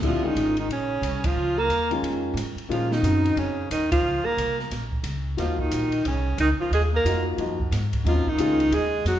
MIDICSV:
0, 0, Header, 1, 7, 480
1, 0, Start_track
1, 0, Key_signature, -5, "minor"
1, 0, Tempo, 334262
1, 42, Time_signature, 4, 2, 24, 8
1, 13201, End_track
2, 0, Start_track
2, 0, Title_t, "Alto saxophone"
2, 0, Program_c, 0, 65
2, 109, Note_on_c, 0, 65, 80
2, 381, Note_on_c, 0, 63, 89
2, 402, Note_off_c, 0, 65, 0
2, 839, Note_off_c, 0, 63, 0
2, 856, Note_on_c, 0, 63, 75
2, 1009, Note_off_c, 0, 63, 0
2, 1037, Note_on_c, 0, 61, 83
2, 1813, Note_on_c, 0, 65, 96
2, 1834, Note_off_c, 0, 61, 0
2, 2279, Note_on_c, 0, 70, 101
2, 2301, Note_off_c, 0, 65, 0
2, 2748, Note_off_c, 0, 70, 0
2, 3900, Note_on_c, 0, 65, 83
2, 4206, Note_on_c, 0, 63, 89
2, 4228, Note_off_c, 0, 65, 0
2, 4864, Note_on_c, 0, 61, 76
2, 4885, Note_off_c, 0, 63, 0
2, 5325, Note_off_c, 0, 61, 0
2, 5334, Note_on_c, 0, 63, 78
2, 5603, Note_off_c, 0, 63, 0
2, 5622, Note_on_c, 0, 65, 95
2, 6108, Note_on_c, 0, 70, 96
2, 6130, Note_off_c, 0, 65, 0
2, 6583, Note_off_c, 0, 70, 0
2, 7747, Note_on_c, 0, 65, 78
2, 8040, Note_on_c, 0, 63, 87
2, 8061, Note_off_c, 0, 65, 0
2, 8693, Note_off_c, 0, 63, 0
2, 8721, Note_on_c, 0, 61, 74
2, 9149, Note_off_c, 0, 61, 0
2, 9193, Note_on_c, 0, 63, 84
2, 9319, Note_off_c, 0, 63, 0
2, 9491, Note_on_c, 0, 65, 80
2, 9647, Note_off_c, 0, 65, 0
2, 9684, Note_on_c, 0, 68, 90
2, 9808, Note_off_c, 0, 68, 0
2, 9997, Note_on_c, 0, 70, 92
2, 10417, Note_off_c, 0, 70, 0
2, 11603, Note_on_c, 0, 65, 88
2, 11901, Note_on_c, 0, 63, 98
2, 11922, Note_off_c, 0, 65, 0
2, 12550, Note_on_c, 0, 68, 100
2, 12572, Note_off_c, 0, 63, 0
2, 13017, Note_off_c, 0, 68, 0
2, 13030, Note_on_c, 0, 66, 85
2, 13201, Note_off_c, 0, 66, 0
2, 13201, End_track
3, 0, Start_track
3, 0, Title_t, "Grand piano"
3, 0, Program_c, 1, 0
3, 29, Note_on_c, 1, 50, 58
3, 34, Note_on_c, 1, 55, 50
3, 34, Note_on_c, 1, 60, 50
3, 36, Note_on_c, 1, 64, 66
3, 302, Note_off_c, 1, 50, 0
3, 304, Note_off_c, 1, 55, 0
3, 304, Note_off_c, 1, 60, 0
3, 305, Note_off_c, 1, 64, 0
3, 329, Note_on_c, 1, 51, 53
3, 332, Note_on_c, 1, 56, 50
3, 333, Note_on_c, 1, 61, 45
3, 349, Note_on_c, 1, 65, 54
3, 754, Note_off_c, 1, 51, 0
3, 755, Note_off_c, 1, 56, 0
3, 756, Note_off_c, 1, 61, 0
3, 764, Note_off_c, 1, 65, 0
3, 2735, Note_on_c, 1, 51, 66
3, 2745, Note_on_c, 1, 56, 57
3, 2748, Note_on_c, 1, 61, 59
3, 2758, Note_on_c, 1, 65, 65
3, 3362, Note_off_c, 1, 51, 0
3, 3368, Note_off_c, 1, 56, 0
3, 3369, Note_off_c, 1, 61, 0
3, 3374, Note_off_c, 1, 65, 0
3, 3858, Note_on_c, 1, 51, 50
3, 3864, Note_on_c, 1, 56, 55
3, 3876, Note_on_c, 1, 61, 50
3, 3877, Note_on_c, 1, 65, 61
3, 4135, Note_off_c, 1, 51, 0
3, 4139, Note_off_c, 1, 56, 0
3, 4145, Note_off_c, 1, 61, 0
3, 4145, Note_off_c, 1, 65, 0
3, 4345, Note_on_c, 1, 49, 54
3, 4352, Note_on_c, 1, 54, 51
3, 4359, Note_on_c, 1, 60, 49
3, 4366, Note_on_c, 1, 63, 57
3, 5070, Note_off_c, 1, 49, 0
3, 5073, Note_off_c, 1, 54, 0
3, 5077, Note_off_c, 1, 60, 0
3, 5080, Note_off_c, 1, 63, 0
3, 7714, Note_on_c, 1, 65, 48
3, 7722, Note_on_c, 1, 58, 44
3, 7725, Note_on_c, 1, 63, 46
3, 7730, Note_on_c, 1, 66, 54
3, 8435, Note_off_c, 1, 65, 0
3, 8439, Note_off_c, 1, 58, 0
3, 8441, Note_off_c, 1, 63, 0
3, 8443, Note_off_c, 1, 66, 0
3, 10127, Note_on_c, 1, 65, 58
3, 10133, Note_on_c, 1, 58, 55
3, 10139, Note_on_c, 1, 63, 56
3, 10143, Note_on_c, 1, 66, 61
3, 10570, Note_off_c, 1, 58, 0
3, 10580, Note_off_c, 1, 63, 0
3, 10585, Note_off_c, 1, 66, 0
3, 10587, Note_off_c, 1, 65, 0
3, 10591, Note_on_c, 1, 53, 56
3, 10591, Note_on_c, 1, 58, 51
3, 10601, Note_on_c, 1, 63, 52
3, 10607, Note_on_c, 1, 66, 61
3, 10864, Note_off_c, 1, 53, 0
3, 10864, Note_off_c, 1, 58, 0
3, 10869, Note_off_c, 1, 63, 0
3, 10872, Note_off_c, 1, 66, 0
3, 11559, Note_on_c, 1, 49, 49
3, 11569, Note_on_c, 1, 54, 50
3, 11574, Note_on_c, 1, 60, 46
3, 11579, Note_on_c, 1, 63, 61
3, 11828, Note_off_c, 1, 49, 0
3, 11833, Note_off_c, 1, 54, 0
3, 11836, Note_off_c, 1, 60, 0
3, 11838, Note_off_c, 1, 63, 0
3, 12046, Note_on_c, 1, 51, 65
3, 12056, Note_on_c, 1, 61, 63
3, 12059, Note_on_c, 1, 56, 62
3, 12062, Note_on_c, 1, 65, 79
3, 12311, Note_off_c, 1, 51, 0
3, 12316, Note_off_c, 1, 61, 0
3, 12318, Note_off_c, 1, 56, 0
3, 12320, Note_off_c, 1, 65, 0
3, 13201, End_track
4, 0, Start_track
4, 0, Title_t, "Tenor saxophone"
4, 0, Program_c, 2, 66
4, 66, Note_on_c, 2, 53, 56
4, 343, Note_on_c, 2, 51, 53
4, 365, Note_off_c, 2, 53, 0
4, 820, Note_off_c, 2, 51, 0
4, 843, Note_on_c, 2, 51, 60
4, 1002, Note_off_c, 2, 51, 0
4, 1015, Note_on_c, 2, 49, 66
4, 1791, Note_on_c, 2, 53, 77
4, 1813, Note_off_c, 2, 49, 0
4, 2276, Note_on_c, 2, 58, 66
4, 2298, Note_off_c, 2, 53, 0
4, 2746, Note_off_c, 2, 58, 0
4, 3884, Note_on_c, 2, 53, 63
4, 4165, Note_on_c, 2, 51, 63
4, 4187, Note_off_c, 2, 53, 0
4, 4842, Note_on_c, 2, 49, 64
4, 4864, Note_off_c, 2, 51, 0
4, 5321, Note_off_c, 2, 49, 0
4, 5331, Note_on_c, 2, 51, 67
4, 5602, Note_off_c, 2, 51, 0
4, 5624, Note_on_c, 2, 53, 76
4, 6106, Note_on_c, 2, 58, 66
4, 6127, Note_off_c, 2, 53, 0
4, 6581, Note_off_c, 2, 58, 0
4, 7729, Note_on_c, 2, 53, 64
4, 8030, Note_on_c, 2, 51, 62
4, 8052, Note_off_c, 2, 53, 0
4, 8668, Note_off_c, 2, 51, 0
4, 8677, Note_on_c, 2, 49, 64
4, 9126, Note_off_c, 2, 49, 0
4, 9195, Note_on_c, 2, 51, 72
4, 9321, Note_off_c, 2, 51, 0
4, 9471, Note_on_c, 2, 53, 75
4, 9636, Note_off_c, 2, 53, 0
4, 9663, Note_on_c, 2, 56, 70
4, 9792, Note_off_c, 2, 56, 0
4, 9971, Note_on_c, 2, 58, 65
4, 10403, Note_off_c, 2, 58, 0
4, 11589, Note_on_c, 2, 53, 67
4, 11902, Note_on_c, 2, 51, 67
4, 11923, Note_off_c, 2, 53, 0
4, 12563, Note_on_c, 2, 56, 83
4, 12584, Note_off_c, 2, 51, 0
4, 13023, Note_off_c, 2, 56, 0
4, 13031, Note_on_c, 2, 54, 69
4, 13201, Note_off_c, 2, 54, 0
4, 13201, End_track
5, 0, Start_track
5, 0, Title_t, "Upright bass"
5, 0, Program_c, 3, 32
5, 28, Note_on_c, 3, 34, 71
5, 297, Note_off_c, 3, 34, 0
5, 507, Note_on_c, 3, 32, 81
5, 970, Note_off_c, 3, 32, 0
5, 979, Note_on_c, 3, 34, 65
5, 1450, Note_off_c, 3, 34, 0
5, 1459, Note_on_c, 3, 36, 88
5, 1935, Note_off_c, 3, 36, 0
5, 1948, Note_on_c, 3, 37, 74
5, 2407, Note_off_c, 3, 37, 0
5, 2416, Note_on_c, 3, 39, 70
5, 2887, Note_off_c, 3, 39, 0
5, 2896, Note_on_c, 3, 41, 70
5, 3346, Note_off_c, 3, 41, 0
5, 3355, Note_on_c, 3, 44, 90
5, 3651, Note_off_c, 3, 44, 0
5, 3859, Note_on_c, 3, 46, 78
5, 4335, Note_off_c, 3, 46, 0
5, 4341, Note_on_c, 3, 42, 78
5, 4816, Note_off_c, 3, 42, 0
5, 4831, Note_on_c, 3, 41, 71
5, 5301, Note_off_c, 3, 41, 0
5, 5320, Note_on_c, 3, 39, 82
5, 5775, Note_off_c, 3, 39, 0
5, 5783, Note_on_c, 3, 37, 77
5, 6067, Note_off_c, 3, 37, 0
5, 6271, Note_on_c, 3, 36, 74
5, 6742, Note_off_c, 3, 36, 0
5, 6756, Note_on_c, 3, 34, 68
5, 7220, Note_off_c, 3, 34, 0
5, 7229, Note_on_c, 3, 37, 81
5, 7701, Note_off_c, 3, 37, 0
5, 7716, Note_on_c, 3, 39, 78
5, 8184, Note_off_c, 3, 39, 0
5, 8199, Note_on_c, 3, 34, 79
5, 8666, Note_off_c, 3, 34, 0
5, 8691, Note_on_c, 3, 36, 74
5, 9153, Note_off_c, 3, 36, 0
5, 9165, Note_on_c, 3, 37, 85
5, 9440, Note_off_c, 3, 37, 0
5, 9632, Note_on_c, 3, 39, 73
5, 10103, Note_off_c, 3, 39, 0
5, 10113, Note_on_c, 3, 41, 77
5, 10584, Note_off_c, 3, 41, 0
5, 10593, Note_on_c, 3, 42, 70
5, 11064, Note_off_c, 3, 42, 0
5, 11076, Note_on_c, 3, 44, 81
5, 11545, Note_off_c, 3, 44, 0
5, 11552, Note_on_c, 3, 39, 84
5, 11833, Note_off_c, 3, 39, 0
5, 12029, Note_on_c, 3, 37, 82
5, 12498, Note_off_c, 3, 37, 0
5, 12507, Note_on_c, 3, 39, 77
5, 12980, Note_off_c, 3, 39, 0
5, 12988, Note_on_c, 3, 41, 83
5, 13201, Note_off_c, 3, 41, 0
5, 13201, End_track
6, 0, Start_track
6, 0, Title_t, "Muted upright bass strokes"
6, 306, Note_on_c, 9, 29, 34
6, 449, Note_off_c, 9, 29, 0
6, 3667, Note_on_c, 9, 29, 37
6, 3810, Note_off_c, 9, 29, 0
6, 6104, Note_on_c, 9, 29, 31
6, 6247, Note_off_c, 9, 29, 0
6, 13201, End_track
7, 0, Start_track
7, 0, Title_t, "Drums"
7, 40, Note_on_c, 9, 36, 60
7, 40, Note_on_c, 9, 49, 60
7, 183, Note_off_c, 9, 36, 0
7, 183, Note_off_c, 9, 49, 0
7, 524, Note_on_c, 9, 44, 48
7, 524, Note_on_c, 9, 51, 57
7, 667, Note_off_c, 9, 44, 0
7, 667, Note_off_c, 9, 51, 0
7, 814, Note_on_c, 9, 51, 43
7, 958, Note_off_c, 9, 51, 0
7, 1012, Note_on_c, 9, 51, 51
7, 1156, Note_off_c, 9, 51, 0
7, 1480, Note_on_c, 9, 44, 45
7, 1480, Note_on_c, 9, 51, 63
7, 1624, Note_off_c, 9, 44, 0
7, 1624, Note_off_c, 9, 51, 0
7, 1779, Note_on_c, 9, 51, 67
7, 1785, Note_on_c, 9, 36, 70
7, 1923, Note_off_c, 9, 51, 0
7, 1928, Note_off_c, 9, 36, 0
7, 2439, Note_on_c, 9, 44, 42
7, 2439, Note_on_c, 9, 51, 54
7, 2582, Note_off_c, 9, 44, 0
7, 2582, Note_off_c, 9, 51, 0
7, 2741, Note_on_c, 9, 51, 42
7, 2884, Note_off_c, 9, 51, 0
7, 2926, Note_on_c, 9, 51, 53
7, 3069, Note_off_c, 9, 51, 0
7, 3405, Note_on_c, 9, 44, 61
7, 3405, Note_on_c, 9, 51, 64
7, 3548, Note_off_c, 9, 44, 0
7, 3548, Note_off_c, 9, 51, 0
7, 3706, Note_on_c, 9, 51, 40
7, 3850, Note_off_c, 9, 51, 0
7, 3896, Note_on_c, 9, 51, 53
7, 4039, Note_off_c, 9, 51, 0
7, 4191, Note_on_c, 9, 38, 52
7, 4334, Note_off_c, 9, 38, 0
7, 4363, Note_on_c, 9, 44, 47
7, 4363, Note_on_c, 9, 51, 53
7, 4506, Note_off_c, 9, 44, 0
7, 4506, Note_off_c, 9, 51, 0
7, 4672, Note_on_c, 9, 51, 39
7, 4816, Note_off_c, 9, 51, 0
7, 4839, Note_on_c, 9, 51, 49
7, 4983, Note_off_c, 9, 51, 0
7, 5326, Note_on_c, 9, 44, 60
7, 5326, Note_on_c, 9, 51, 64
7, 5470, Note_off_c, 9, 44, 0
7, 5470, Note_off_c, 9, 51, 0
7, 5627, Note_on_c, 9, 36, 80
7, 5627, Note_on_c, 9, 51, 64
7, 5770, Note_off_c, 9, 51, 0
7, 5771, Note_off_c, 9, 36, 0
7, 6293, Note_on_c, 9, 44, 46
7, 6293, Note_on_c, 9, 51, 58
7, 6437, Note_off_c, 9, 44, 0
7, 6437, Note_off_c, 9, 51, 0
7, 6599, Note_on_c, 9, 38, 32
7, 6742, Note_off_c, 9, 38, 0
7, 6767, Note_on_c, 9, 51, 55
7, 6772, Note_on_c, 9, 38, 37
7, 6910, Note_off_c, 9, 51, 0
7, 6916, Note_off_c, 9, 38, 0
7, 7063, Note_on_c, 9, 36, 49
7, 7207, Note_off_c, 9, 36, 0
7, 7233, Note_on_c, 9, 44, 59
7, 7233, Note_on_c, 9, 51, 59
7, 7376, Note_off_c, 9, 44, 0
7, 7376, Note_off_c, 9, 51, 0
7, 7727, Note_on_c, 9, 51, 49
7, 7733, Note_on_c, 9, 38, 33
7, 7871, Note_off_c, 9, 51, 0
7, 7877, Note_off_c, 9, 38, 0
7, 8025, Note_on_c, 9, 36, 46
7, 8169, Note_off_c, 9, 36, 0
7, 8205, Note_on_c, 9, 44, 50
7, 8205, Note_on_c, 9, 51, 60
7, 8349, Note_off_c, 9, 44, 0
7, 8349, Note_off_c, 9, 51, 0
7, 8501, Note_on_c, 9, 51, 45
7, 8645, Note_off_c, 9, 51, 0
7, 8688, Note_on_c, 9, 51, 60
7, 8831, Note_off_c, 9, 51, 0
7, 9164, Note_on_c, 9, 44, 55
7, 9164, Note_on_c, 9, 51, 68
7, 9307, Note_off_c, 9, 44, 0
7, 9307, Note_off_c, 9, 51, 0
7, 9659, Note_on_c, 9, 51, 60
7, 9803, Note_off_c, 9, 51, 0
7, 10134, Note_on_c, 9, 44, 50
7, 10134, Note_on_c, 9, 51, 53
7, 10278, Note_off_c, 9, 44, 0
7, 10278, Note_off_c, 9, 51, 0
7, 10601, Note_on_c, 9, 51, 51
7, 10744, Note_off_c, 9, 51, 0
7, 10910, Note_on_c, 9, 36, 51
7, 11054, Note_off_c, 9, 36, 0
7, 11089, Note_on_c, 9, 44, 54
7, 11089, Note_on_c, 9, 51, 62
7, 11095, Note_on_c, 9, 38, 36
7, 11233, Note_off_c, 9, 44, 0
7, 11233, Note_off_c, 9, 51, 0
7, 11238, Note_off_c, 9, 38, 0
7, 11385, Note_on_c, 9, 51, 44
7, 11391, Note_on_c, 9, 36, 51
7, 11529, Note_off_c, 9, 51, 0
7, 11535, Note_off_c, 9, 36, 0
7, 11580, Note_on_c, 9, 51, 52
7, 11723, Note_off_c, 9, 51, 0
7, 11872, Note_on_c, 9, 36, 44
7, 12016, Note_off_c, 9, 36, 0
7, 12038, Note_on_c, 9, 44, 55
7, 12038, Note_on_c, 9, 51, 63
7, 12182, Note_off_c, 9, 44, 0
7, 12182, Note_off_c, 9, 51, 0
7, 12348, Note_on_c, 9, 51, 44
7, 12491, Note_off_c, 9, 51, 0
7, 12526, Note_on_c, 9, 51, 54
7, 12670, Note_off_c, 9, 51, 0
7, 13007, Note_on_c, 9, 44, 56
7, 13007, Note_on_c, 9, 51, 59
7, 13012, Note_on_c, 9, 38, 38
7, 13150, Note_off_c, 9, 44, 0
7, 13150, Note_off_c, 9, 51, 0
7, 13156, Note_off_c, 9, 38, 0
7, 13201, End_track
0, 0, End_of_file